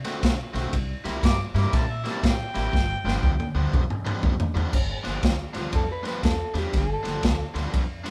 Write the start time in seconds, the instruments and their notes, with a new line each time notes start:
0.05 overdriven electric guitar D3 A3 C4 F#4, snare, ride
0.23 upright bass B2, kick, snare, ride
0.53 upright bass B1, overdriven electric guitar D3 A3 C4 F#4, snare, ride
0.73 upright bass C2, kick, ride
1.04 upright bass C2, overdriven electric guitar C3 G3 A#3 E4, snare, ride
1.23 upright bass G2, harmonica D6, kick, snare, ride
1.54 upright bass G2, overdriven electric guitar C3 G3 A#3 E4, snare, ride
1.59 harmonica D6
1.73 upright bass A#2, harmonica A5, kick, snare, ride
1.91 harmonica E5
2.04 overdriven electric guitar C3 G3 A#3 E4, snare, ride
2.10 harmonica A5
2.23 upright bass A2, harmonica G5, kick, snare, ride
2.55 upright bass A1, overdriven electric guitar C3 G3 A#3 E4, snare, ride
2.73 upright bass G1, kick, snare
3.04 upright bass G1, overdriven electric guitar G2 F3 B3 D4, snare
3.23 upright bass D2, kick
3.40 high tom
3.55 upright bass D2, overdriven electric guitar G2 F3 B3 D4
3.73 upright bass F2, kick, mid tom
3.90 mid tom
4.05 overdriven electric guitar G2 F3 B3 D4, mid tom
4.23 upright bass E2, kick, floor tom
4.40 floor tom
4.54 upright bass E2, overdriven electric guitar G2 F3 B3 D4, floor tom
4.73 upright bass G1, kick, crash
5.04 upright bass G1, overdriven electric guitar G2 F3 B3 D4, snare, ride
5.23 upright bass D2, kick, snare, ride
5.53 upright bass D2, overdriven electric guitar G2 F3 B3 D4, snare, ride
5.58 clean electric guitar F4
5.73 upright bass F2, clean electric guitar A4, kick, ride
5.92 clean electric guitar B4
6.03 overdriven electric guitar G2 F3 B3 D4, snare, ride
6.07 clean electric guitar B4
6.23 upright bass E2, clean electric guitar A4, kick, snare, ride
6.54 upright bass E2, overdriven electric guitar G2 F3 B3 D4, snare, ride
6.58 clean electric guitar G4
6.73 upright bass G1, kick, snare, ride
6.78 clean electric guitar A4
7.03 upright bass G1, overdriven electric guitar G2 F3 B3 D4, snare, ride
7.23 upright bass D2, kick, snare, ride
7.54 upright bass D2, overdriven electric guitar G2 F3 B3 D4, snare, ride
7.73 upright bass F2, kick, ride
8.04 overdriven electric guitar G2 F3 B3 D4, ride